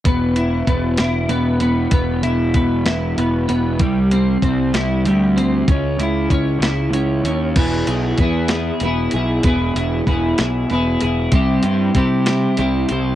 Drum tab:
CC |------|------|------|------|
HH |xxxxxx|xxxxxx|xxxxxx|xxxxxx|
SD |---o--|---o--|---o--|---o--|
BD |o-o---|o-o---|o-o---|o-o---|

CC |x-----|------|------|
HH |xxxxxx|xxxxxx|xxxxxx|
SD |---o--|---o--|---o--|
BD |o-o---|o-o---|o-o---|